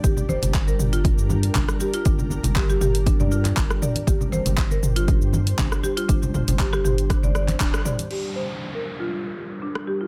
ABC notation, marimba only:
X:1
M:4/4
L:1/16
Q:"Swing 16ths" 1/4=119
K:Gm
V:1 name="Marimba"
G z c z2 B z F z4 D z G F | D z3 G G G z D d F z3 d z | G z c z2 B z F z4 D z G F | D z3 G G G z D d d z D z d z |
G z c z2 B z F z4 D z G F |]